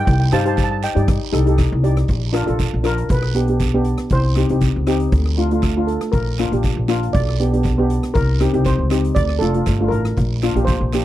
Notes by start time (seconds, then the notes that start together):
0.05 C2 G5, kick, closed hi-hat, long guiro
0.13 G5
0.20 G5
0.32 G2 D#4 G4 C5 F5 A5, cross-stick, closed hi-hat, short guiro
0.41 A5
0.45 D#4 G4 C5 A5, closed hi-hat
0.56 A5, kick, closed hi-hat, short guiro
0.64 A5
0.71 A5
0.83 D#5 G5, closed hi-hat, short guiro
0.95 G2 D#4 G4 D5, closed hi-hat
1.08 kick, cross-stick, closed hi-hat, long guiro
1.32 C2 D#4 G4 A4, cross-stick, closed hi-hat
1.46 D#4 G4 A4, closed hi-hat
1.58 kick, cross-stick, closed hi-hat, short guiro
1.72 C2
1.83 D#4 G4 D5, closed hi-hat
1.97 cross-stick, closed hi-hat
2.08 A#1, kick, closed hi-hat, long guiro
2.33 D4 F4 A#4, cross-stick, closed hi-hat, short guiro
2.46 A#1 D4 F4 A4, closed hi-hat
2.59 kick, closed hi-hat, short guiro
2.74 A#1
2.83 D4 F4 A#4, cross-stick, closed hi-hat, short guiro
2.98 closed hi-hat
3.09 B1 B4, kick, closed hi-hat, long guiro
3.22 cross-stick
3.34 B3 D4 G4, closed hi-hat
3.48 B3 D4 G4, closed hi-hat
3.59 kick, closed hi-hat, short guiro
3.74 B3 D4 G4
3.84 closed hi-hat
3.98 cross-stick, closed hi-hat
4.10 C2 C5, kick, closed hi-hat, long guiro
4.35 C4 D#4 G4, cross-stick, closed hi-hat, short guiro
4.49 C2 C4 D#4 G4, closed hi-hat
4.61 kick, closed hi-hat, short guiro
4.76 C#2
4.87 C4 D#4 G4, cross-stick, closed hi-hat, short guiro
5.00 closed hi-hat
5.12 D2, kick, closed hi-hat, long guiro
5.26 cross-stick
5.37 A3 D4 F4, closed hi-hat
5.51 A3 D4 F4, closed hi-hat
5.62 kick, cross-stick, closed hi-hat, short guiro
5.77 A3 D4 F4
5.87 A4, closed hi-hat
6.01 cross-stick, closed hi-hat
6.12 A#1 A#4, kick, closed hi-hat, long guiro
6.38 A#3 D4 F4, cross-stick, closed hi-hat, short guiro
6.52 A#1 A#3 D4 G4, closed hi-hat
6.63 kick, closed hi-hat, short guiro
6.77 A#1
6.88 A#3 D4 F4, cross-stick, closed hi-hat, short guiro
7.03 closed hi-hat
7.13 B1 D5, kick, closed hi-hat, long guiro
7.29 cross-stick
7.40 B3 D4 G4, closed hi-hat
7.53 B3 D4 G4, closed hi-hat
7.63 kick, closed hi-hat, short guiro
7.78 B3 D4 G4
7.90 closed hi-hat
8.03 cross-stick, closed hi-hat
8.14 C2 A#4, kick, closed hi-hat, long guiro
8.40 C4 D#4 G4, cross-stick, closed hi-hat, short guiro
8.53 C2 C4 D#4 G4, closed hi-hat
8.65 C5, kick, closed hi-hat, short guiro
8.78 C#2
8.90 C4 D#4 G4, cross-stick, closed hi-hat, short guiro
9.04 closed hi-hat
9.15 D2 D5, kick, closed hi-hat, long guiro
9.29 cross-stick
9.39 F1 A3 D4 F4 A4, closed hi-hat
9.54 A3 D4 F4, closed hi-hat
9.66 G1, kick, cross-stick, closed hi-hat, short guiro
9.80 A3 D4 F4
9.88 A1 A#4, closed hi-hat
10.05 cross-stick, closed hi-hat
10.17 A#1, kick, closed hi-hat, long guiro
10.42 A#3 D4 F4, cross-stick, closed hi-hat, short guiro
10.55 A#1 A#3 D4 G4, closed hi-hat
10.65 C5, kick, closed hi-hat, short guiro
10.81 A#1
10.93 A#3 D4 G4, cross-stick, closed hi-hat, short guiro